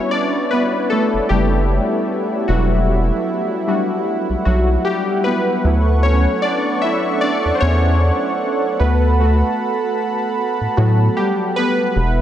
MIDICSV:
0, 0, Header, 1, 4, 480
1, 0, Start_track
1, 0, Tempo, 789474
1, 1509, Time_signature, 4, 2, 24, 8
1, 7427, End_track
2, 0, Start_track
2, 0, Title_t, "Analog synth pad"
2, 0, Program_c, 0, 89
2, 0, Note_on_c, 0, 64, 82
2, 0, Note_on_c, 0, 76, 73
2, 0, Note_on_c, 0, 78, 75
2, 3405, Note_off_c, 0, 64, 0
2, 3405, Note_off_c, 0, 76, 0
2, 3429, Note_on_c, 0, 69, 83
2, 3429, Note_on_c, 0, 85, 90
2, 5330, Note_off_c, 0, 85, 0
2, 5349, Note_on_c, 0, 81, 76
2, 5351, Note_on_c, 0, 83, 92
2, 7245, Note_off_c, 0, 69, 0
2, 7250, Note_off_c, 0, 81, 0
2, 7251, Note_off_c, 0, 83, 0
2, 7269, Note_on_c, 0, 64, 80
2, 7269, Note_on_c, 0, 76, 72
2, 7427, Note_off_c, 0, 64, 0
2, 7427, Note_off_c, 0, 76, 0
2, 7427, Note_off_c, 0, 78, 0
2, 7427, End_track
3, 0, Start_track
3, 0, Title_t, "Synth keys"
3, 0, Program_c, 1, 88
3, 0, Control_c, 1, 64, 127
3, 0, Note_on_c, 1, 55, 54
3, 0, Note_on_c, 1, 59, 66
3, 0, Note_on_c, 1, 61, 67
3, 0, Note_on_c, 1, 62, 50
3, 0, Note_on_c, 1, 66, 58
3, 0, Note_on_c, 1, 71, 88
3, 0, Note_on_c, 1, 73, 90
3, 67, Note_on_c, 1, 74, 94
3, 73, Note_off_c, 1, 62, 0
3, 80, Note_on_c, 1, 62, 71
3, 286, Note_off_c, 1, 55, 0
3, 289, Note_off_c, 1, 66, 0
3, 298, Note_off_c, 1, 62, 0
3, 308, Note_off_c, 1, 71, 0
3, 308, Note_on_c, 1, 71, 88
3, 316, Note_off_c, 1, 74, 0
3, 321, Note_off_c, 1, 59, 0
3, 321, Note_on_c, 1, 59, 70
3, 539, Note_off_c, 1, 59, 0
3, 547, Note_on_c, 1, 69, 92
3, 556, Note_off_c, 1, 71, 0
3, 561, Note_on_c, 1, 57, 72
3, 778, Note_off_c, 1, 57, 0
3, 785, Note_on_c, 1, 67, 88
3, 795, Note_off_c, 1, 69, 0
3, 799, Note_on_c, 1, 55, 67
3, 1490, Note_off_c, 1, 55, 0
3, 1507, Note_on_c, 1, 66, 74
3, 1520, Note_on_c, 1, 54, 63
3, 1529, Note_off_c, 1, 67, 0
3, 1964, Note_off_c, 1, 66, 0
3, 1970, Note_off_c, 1, 54, 0
3, 2233, Note_on_c, 1, 55, 55
3, 2236, Note_on_c, 1, 62, 50
3, 2240, Note_on_c, 1, 66, 59
3, 2700, Note_off_c, 1, 66, 0
3, 2707, Note_on_c, 1, 66, 74
3, 2721, Note_on_c, 1, 54, 61
3, 2927, Note_off_c, 1, 55, 0
3, 2928, Note_off_c, 1, 62, 0
3, 2939, Note_off_c, 1, 54, 0
3, 2947, Note_on_c, 1, 67, 87
3, 2955, Note_off_c, 1, 66, 0
3, 2962, Note_on_c, 1, 55, 68
3, 3179, Note_off_c, 1, 55, 0
3, 3186, Note_on_c, 1, 71, 86
3, 3195, Note_off_c, 1, 67, 0
3, 3202, Note_on_c, 1, 59, 66
3, 3433, Note_on_c, 1, 54, 53
3, 3436, Note_on_c, 1, 57, 50
3, 3438, Control_c, 1, 64, 0
3, 3439, Note_off_c, 1, 61, 0
3, 3440, Note_on_c, 1, 64, 58
3, 3444, Note_off_c, 1, 73, 0
3, 3536, Control_c, 1, 64, 127
3, 3651, Note_off_c, 1, 59, 0
3, 3666, Note_on_c, 1, 73, 90
3, 3682, Note_off_c, 1, 71, 0
3, 3682, Note_on_c, 1, 61, 70
3, 3899, Note_off_c, 1, 61, 0
3, 3904, Note_on_c, 1, 74, 94
3, 3915, Note_off_c, 1, 73, 0
3, 3921, Note_on_c, 1, 62, 74
3, 4127, Note_off_c, 1, 54, 0
3, 4128, Note_off_c, 1, 57, 0
3, 4130, Note_off_c, 1, 64, 0
3, 4139, Note_off_c, 1, 62, 0
3, 4144, Note_on_c, 1, 76, 91
3, 4154, Note_off_c, 1, 74, 0
3, 4162, Note_on_c, 1, 64, 72
3, 4379, Note_off_c, 1, 64, 0
3, 4384, Note_on_c, 1, 74, 100
3, 4394, Note_off_c, 1, 76, 0
3, 4401, Note_on_c, 1, 62, 76
3, 4585, Note_off_c, 1, 62, 0
3, 4591, Note_on_c, 1, 72, 66
3, 4597, Note_off_c, 1, 74, 0
3, 4624, Note_on_c, 1, 73, 102
3, 4628, Note_off_c, 1, 72, 0
3, 4640, Note_on_c, 1, 61, 77
3, 5330, Note_off_c, 1, 61, 0
3, 5347, Note_on_c, 1, 71, 80
3, 5358, Control_c, 1, 64, 0
3, 5362, Note_on_c, 1, 59, 61
3, 5368, Note_off_c, 1, 73, 0
3, 5460, Control_c, 1, 64, 127
3, 5589, Note_off_c, 1, 59, 0
3, 5593, Note_on_c, 1, 57, 54
3, 5597, Note_on_c, 1, 59, 48
3, 5600, Note_on_c, 1, 66, 57
3, 5804, Note_off_c, 1, 71, 0
3, 6542, Note_off_c, 1, 66, 0
3, 6547, Note_off_c, 1, 57, 0
3, 6549, Note_off_c, 1, 59, 0
3, 6549, Note_on_c, 1, 66, 80
3, 6554, Note_on_c, 1, 57, 47
3, 6556, Note_on_c, 1, 59, 45
3, 6559, Note_off_c, 1, 66, 0
3, 6559, Note_on_c, 1, 66, 52
3, 6561, Note_on_c, 1, 54, 63
3, 6768, Note_off_c, 1, 57, 0
3, 6769, Note_off_c, 1, 59, 0
3, 6770, Note_off_c, 1, 66, 0
3, 6779, Note_off_c, 1, 54, 0
3, 6789, Note_on_c, 1, 67, 89
3, 6802, Note_on_c, 1, 55, 67
3, 7019, Note_off_c, 1, 55, 0
3, 7030, Note_on_c, 1, 71, 90
3, 7037, Note_off_c, 1, 67, 0
3, 7043, Note_on_c, 1, 59, 70
3, 7277, Control_c, 1, 64, 0
3, 7393, Control_c, 1, 64, 127
3, 7427, Note_off_c, 1, 59, 0
3, 7427, Note_off_c, 1, 71, 0
3, 7427, End_track
4, 0, Start_track
4, 0, Title_t, "Analog synth bass"
4, 0, Program_c, 2, 38
4, 690, Note_on_c, 2, 30, 47
4, 730, Note_off_c, 2, 30, 0
4, 792, Note_on_c, 2, 30, 95
4, 1092, Note_off_c, 2, 30, 0
4, 1512, Note_on_c, 2, 28, 102
4, 1892, Note_off_c, 2, 28, 0
4, 2611, Note_on_c, 2, 35, 46
4, 2651, Note_off_c, 2, 35, 0
4, 2712, Note_on_c, 2, 35, 90
4, 2901, Note_off_c, 2, 35, 0
4, 3432, Note_on_c, 2, 38, 104
4, 3812, Note_off_c, 2, 38, 0
4, 4531, Note_on_c, 2, 40, 45
4, 4571, Note_off_c, 2, 40, 0
4, 4632, Note_on_c, 2, 40, 93
4, 4932, Note_off_c, 2, 40, 0
4, 5351, Note_on_c, 2, 38, 102
4, 5732, Note_off_c, 2, 38, 0
4, 6451, Note_on_c, 2, 45, 48
4, 6491, Note_off_c, 2, 45, 0
4, 6552, Note_on_c, 2, 45, 93
4, 6742, Note_off_c, 2, 45, 0
4, 7272, Note_on_c, 2, 28, 111
4, 7427, Note_off_c, 2, 28, 0
4, 7427, End_track
0, 0, End_of_file